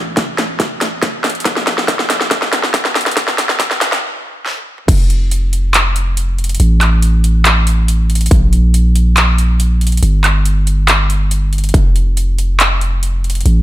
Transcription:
0.00 1.43 A1 medium
0.17 kick loud
0.17 snare medium
0.17 closed hi-hat medium
0.38 snare medium
0.38 closed hi-hat medium
0.60 kick loud
0.60 snare medium
0.60 closed hi-hat medium
0.81 snare medium
0.81 closed hi-hat medium
1.03 kick loud
1.03 snare medium
1.03 closed hi-hat medium
1.24 snare medium
1.24 closed hi-hat soft
1.30 closed hi-hat medium
1.35 closed hi-hat soft
1.40 closed hi-hat medium
1.45 3.15 A#1 medium
1.45 kick loud
1.45 snare medium
1.45 closed hi-hat medium
1.56 snare medium
1.67 snare medium
1.67 closed hi-hat medium
1.78 snare medium
1.88 kick loud
1.88 snare medium
1.88 closed hi-hat medium
1.99 snare medium
2.10 snare loud
2.10 closed hi-hat medium
2.21 snare medium
2.31 kick loud
2.31 snare medium
2.31 closed hi-hat medium
2.42 snare medium
2.53 snare loud
2.53 closed hi-hat medium
2.64 snare medium
2.74 kick loud
2.74 snare loud
2.74 closed hi-hat medium
2.85 snare medium
2.95 snare loud
2.95 closed hi-hat soft
3.01 closed hi-hat medium
3.06 snare medium
3.06 closed hi-hat soft
3.11 closed hi-hat medium
3.17 4.03 G1 medium
3.17 kick loud
3.17 snare loud
3.17 closed hi-hat medium
3.28 snare medium
3.38 snare loud
3.38 closed hi-hat medium
3.49 snare medium
3.60 kick loud
3.60 snare loud
3.60 closed hi-hat medium
3.71 snare medium
3.81 snare loud
3.81 closed hi-hat medium
3.92 snare medium
4.46 snare medium
4.57 high tom medium
4.78 mid tom medium
4.88 6.58 F1 medium
4.88 kick loud
4.88 closed hi-hat medium
4.88 crash loud
5.10 closed hi-hat medium
5.31 closed hi-hat medium
5.53 closed hi-hat medium
5.74 clap loud
5.74 closed hi-hat medium
5.96 closed hi-hat medium
6.17 closed hi-hat medium
6.38 closed hi-hat medium
6.44 closed hi-hat medium
6.49 closed hi-hat medium
6.55 closed hi-hat medium
6.60 8.29 A1 medium
6.60 closed hi-hat medium
6.81 clap medium
6.81 closed hi-hat medium
6.81 high woodblock medium
7.02 closed hi-hat medium
7.24 closed hi-hat medium
7.45 clap loud
7.45 closed hi-hat medium
7.67 closed hi-hat medium
7.88 closed hi-hat medium
8.10 closed hi-hat medium
8.15 closed hi-hat medium
8.21 closed hi-hat medium
8.26 closed hi-hat medium
8.31 10.01 A#1 medium
8.31 kick loud
8.31 closed hi-hat medium
8.53 closed hi-hat medium
8.74 closed hi-hat medium
8.96 closed hi-hat medium
9.17 clap loud
9.17 closed hi-hat medium
9.38 closed hi-hat medium
9.60 closed hi-hat medium
9.81 closed hi-hat medium
9.87 closed hi-hat medium
9.92 closed hi-hat medium
9.97 closed hi-hat medium
10.03 11.72 G1 medium
10.03 closed hi-hat medium
10.24 clap medium
10.24 closed hi-hat medium
10.24 high woodblock medium
10.46 closed hi-hat medium
10.67 closed hi-hat medium
10.88 clap loud
10.88 closed hi-hat medium
11.10 closed hi-hat medium
11.31 closed hi-hat medium
11.53 closed hi-hat soft
11.58 closed hi-hat medium
11.64 closed hi-hat soft
11.69 closed hi-hat medium
11.74 13.43 F1 medium
11.74 kick loud
11.74 closed hi-hat medium
11.96 closed hi-hat medium
12.17 closed hi-hat medium
12.38 closed hi-hat medium
12.60 clap loud
12.60 closed hi-hat medium
12.81 closed hi-hat medium
13.03 closed hi-hat medium
13.24 closed hi-hat soft
13.30 closed hi-hat medium
13.35 closed hi-hat soft
13.41 closed hi-hat medium
13.46 13.62 A1 medium
13.46 closed hi-hat medium

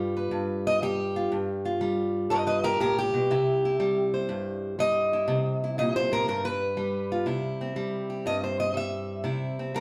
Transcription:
0.00 0.31 G2 medium
0.00 0.82 G3 medium
0.00 1.15 F4 soft
0.00 0.16 B4 medium
0.17 1.30 B4 soft
0.31 1.30 G2 medium
0.67 0.83 D#5 loud
0.82 1.80 G3 medium
0.82 1.32 G4 loud
1.16 1.30 F4 soft
1.32 2.30 G2 medium
1.65 3.28 F4 soft
1.81 3.79 G3 medium
2.30 2.80 G2 medium
2.30 2.36 B4 medium
2.30 2.46 D#5 loud
2.47 2.58 B4 medium
2.47 2.64 D#5 loud
2.64 2.79 G4 medium
2.64 2.80 A#4 loud
2.80 3.13 A2 medium
2.80 2.97 G4 medium
2.80 2.97 A#4 loud
2.98 3.97 G4 loud
3.14 3.30 B2 medium
3.31 4.29 C3 medium
3.31 3.64 E4 medium
3.65 5.12 E4 soft
3.80 4.78 G3 medium
4.14 4.79 C5 medium
4.29 5.28 G2 medium
4.79 6.76 G3 medium
4.79 5.78 D#5 loud
5.13 5.27 E4 medium
5.28 6.27 C3 medium
5.64 6.26 E4 soft
5.78 6.11 A#2 medium
5.78 5.95 D#5 loud
5.96 6.12 C5 loud
6.12 6.27 A2 medium
6.12 6.27 A#4 loud
6.28 7.27 G2 medium
6.28 6.44 A#4 medium
6.45 7.27 B4 loud
6.77 7.75 G3 medium
7.12 7.25 F4 medium
7.26 8.25 C3 medium
7.26 9.24 E4 medium
7.61 9.59 C4 soft
7.76 8.73 G3 medium
8.10 8.26 G4 soft
8.26 9.25 G2 medium
8.26 8.43 D#5 loud
8.44 8.59 C5 medium
8.60 8.76 D#5 medium
8.74 9.74 G3 medium
8.74 9.26 E5 medium
9.24 9.80 C3 medium
9.24 9.75 E4 medium
9.59 9.80 C4 soft
9.74 9.80 G3 medium
9.74 9.80 A#4 loud

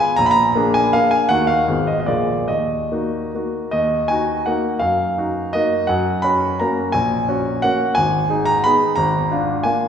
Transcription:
0.00 0.16 B3 medium
0.00 0.16 F4 medium
0.00 0.16 G#4 medium
0.00 0.18 G#5 loud
0.16 0.55 A#1 medium
0.16 0.24 A#5 loud
0.26 0.33 B5 loud
0.31 0.75 A#5 loud
0.56 0.90 A#3 medium
0.56 0.91 D4 medium
0.56 0.91 G#4 medium
0.74 0.94 G#5 loud
0.93 1.27 A#3 medium
0.93 1.27 D4 medium
0.93 1.27 G#4 medium
0.93 1.12 F5 loud
1.11 1.29 G#5 medium
1.29 1.67 D#2 medium
1.29 1.64 A#3 soft
1.29 1.65 D#4 soft
1.29 1.65 F#4 soft
1.29 1.48 F#5 loud
1.47 1.88 F5 loud
1.68 2.07 G#1 medium
1.68 2.04 B3 soft
1.68 2.04 F4 soft
1.68 2.05 G#4 soft
1.87 1.98 D#5 medium
2.00 2.08 D#5 medium
2.06 2.47 A#1 medium
2.06 2.44 A#3 soft
2.06 2.45 F4 soft
2.06 2.45 G#4 soft
2.06 2.47 D5 medium
2.48 2.90 D#2 medium
2.48 3.54 D#5 medium
2.92 3.30 A#3 soft
2.92 3.30 D#4 soft
2.92 3.30 F#4 soft
3.35 3.70 A#3 soft
3.35 3.70 D#4 soft
3.35 3.70 F#4 soft
3.71 4.08 D#2 medium
3.71 4.09 D#5 medium
4.08 4.44 D#4 soft
4.08 4.45 F#4 medium
4.08 4.47 G#5 medium
4.46 4.79 A#3 medium
4.46 4.79 D#4 soft
4.46 4.79 F#4 medium
4.46 4.82 F#5 medium
4.79 5.16 F#2 medium
4.79 5.53 F5 medium
5.18 5.51 D#4 medium
5.18 5.51 F#4 medium
5.53 5.86 A#3 medium
5.53 5.86 D#4 medium
5.53 5.86 F#4 medium
5.53 5.88 D#5 medium
5.87 6.23 F#2 medium
5.87 6.24 F#5 medium
6.22 6.57 C#4 medium
6.22 6.57 F#4 medium
6.22 6.59 B5 loud
6.59 6.91 A#3 medium
6.59 6.92 C#4 medium
6.59 6.92 F#4 medium
6.59 6.94 A#5 medium
6.92 7.28 A#1 medium
6.92 7.63 G#5 loud
7.29 7.60 C#4 medium
7.29 7.60 F#4 medium
7.62 7.93 A#3 medium
7.62 7.93 C#4 medium
7.62 7.93 F#4 medium
7.62 7.95 F#5 loud
7.95 8.28 G#1 medium
7.95 8.46 G#5 loud
8.30 8.60 D#4 medium
8.30 8.61 G#4 medium
8.46 8.63 A#5 loud
8.64 8.94 B3 medium
8.64 8.94 D#4 medium
8.64 8.94 G#4 medium
8.64 8.96 B5 loud
8.95 9.29 G#1 medium
8.95 9.64 A#5 loud
9.31 9.61 D4 medium
9.31 9.62 F4 medium
9.63 9.88 A#3 soft
9.63 9.88 D4 soft
9.63 9.88 F4 medium
9.63 9.88 G#5 medium

